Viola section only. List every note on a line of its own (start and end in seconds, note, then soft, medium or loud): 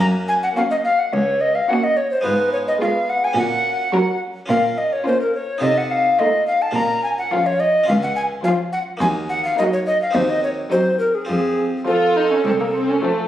0.57 0.99 A#3 soft
1.69 2.11 A#3 soft
2.82 3.23 G#3 medium
3.94 4.36 F#3 medium
5.07 5.48 A#3 medium
6.20 6.61 A3 medium
7.32 7.74 F3 medium
8.45 8.87 F3 medium
9.59 10.01 F#3 medium
10.72 11.14 F#3 medium
11.87 12.31 F3 soft
13.03 13.28 F3 medium